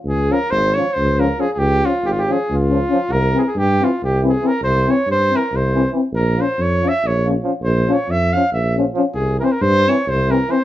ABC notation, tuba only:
X:1
M:7/8
L:1/8
Q:1/4=138
K:none
V:1 name="Tuba" clef=bass
_D,,2 _A,,,2 D,,3 | _D,,2 _A,,,2 D,,3 | C,,2 G,,2 C,,3 | C,,2 G,,2 C,,3 |
_B,,,2 F,,2 B,,,3 | _B,,,2 F,,2 B,,,3 | C,,2 G,,2 C,,3 |]